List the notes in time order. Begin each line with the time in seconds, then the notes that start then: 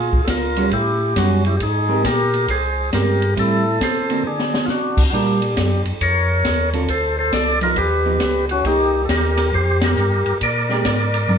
Already playing: A#2 F4 G#4
0.13 A#2, kick
0.24 C#2 A4, kick, snare, hi-hat pedal, ride
0.30 F4 A#4
0.57 G3 C#4 F#4, ride
0.71 A2 E4 G4, kick, ride
1.16 F#2 G3 C#4 F#4, kick, snare, hi-hat pedal, ride
1.45 E4 G4, ride
1.57 G#2 G4, kick, ride
1.63 D#4 G#4
1.88 G#3 C4 G4 A#4
2.04 A#2 G4 A#4, kick, snare, hi-hat pedal, ride
2.34 ride
2.48 C2 G#4 C5, kick, ride
2.92 G2 G#3 C4 G4 A#4, kick, snare, hi-hat pedal, ride
3.22 ride
3.36 A2 G3 C4 E4 A4, kick, ride
3.40 E4
3.81 C3 A4 C5, kick, snare, hi-hat pedal, ride
4.10 D3 A#3 C4 F#4, ride
4.24 D3 D4 G#4
4.39 snare
4.54 snare
4.66 C3 F4, snare, hi-hat pedal
4.70 D4 F#4
4.97 kick, crash
5.10 A#2 G3 D4 F4 F#4 G4 A#4, kick
5.14 D4
5.42 ride
5.57 F#2, kick, snare, hi-hat pedal, ride
5.85 F#2, ride
6.01 F2 A#4 C#5, kick, ride
6.44 D#2, kick, snare, hi-hat pedal, ride
6.73 D3 C4 F4 A4, ride
6.88 D2 A4 C5, kick, ride
7.19 A4 C5
7.32 C2 A4 D5, kick, snare, hi-hat pedal, ride
7.61 F3 B3 D#4 F4 A#4, ride
7.76 D#2 G4 B4, kick, ride
8.05 F3 B3 D#4
8.20 C#2, kick, snare, hi-hat pedal, ride
8.49 C#4 F#4, ride
8.65 C2 A#3 D#4 G4, kick, ride
9.05 D#2 A4, kick, snare, hi-hat pedal, ride
9.10 G4 A#4
9.37 snare, ride
9.53 F2 G4 C5, kick
9.81 G4 A#4, snare, ride
9.97 G2, hi-hat pedal
10.26 G2, ride
10.41 A#2 A#4 D5, kick, ride
10.69 G#3 D4 G4, snare
10.85 G#2, kick, snare, hi-hat pedal, ride
11.14 ride
11.27 G2, mid tom